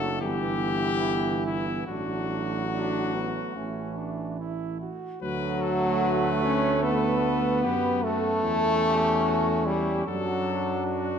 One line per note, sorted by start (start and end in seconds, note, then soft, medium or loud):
0.00 0.23 F#1 medium
0.00 0.23 F#3 loud
0.00 0.18 A3 medium
0.00 0.18 D4 medium
0.00 0.21 A4 loud
0.21 1.87 G1 medium
0.21 1.87 E3 medium
0.21 1.84 B3 medium
0.21 1.84 E4 medium
0.21 1.43 G4 loud
1.46 1.87 E4 medium
1.87 3.38 A1 medium
1.87 3.58 F#3 medium
1.87 3.53 A3 medium
1.87 2.62 D4 medium
1.87 4.35 F#4 medium
2.72 3.16 D4 medium
3.14 3.58 B3 medium
3.55 4.86 A1 medium
3.55 4.90 E3 medium
3.55 4.87 A3 medium
3.55 3.99 C#4 medium
3.97 4.39 D4 medium
4.39 4.80 E4 medium
4.81 5.21 F#4 medium
5.22 7.66 D2 medium
5.22 6.40 F#3 loud
5.22 7.65 A3 loud
5.22 6.45 F#4 loud
5.22 5.64 B4 medium
5.62 6.04 A4 medium
6.03 6.84 B4 loud
6.44 6.85 C#4 loud
6.44 6.86 C#5 medium
6.83 8.06 B3 loud
6.83 7.63 A4 medium
6.83 8.06 B4 loud
7.63 8.46 F#2 medium
7.63 8.43 B3 medium
7.63 8.03 G4 medium
8.04 9.68 A3 loud
8.04 8.46 F#4 medium
8.04 9.50 A4 loud
8.44 10.05 E2 medium
8.44 10.09 C#4 medium
8.44 8.85 E4 medium
8.86 9.27 G4 medium
9.26 9.66 F#4 medium
9.66 10.07 G3 loud
9.66 10.06 E4 medium
9.66 10.06 G4 medium
10.06 11.19 F#2 medium
10.06 11.19 F#3 loud
10.06 11.19 D4 medium
10.06 11.19 F#4 medium
10.06 10.85 A4 medium
10.86 11.19 F#4 medium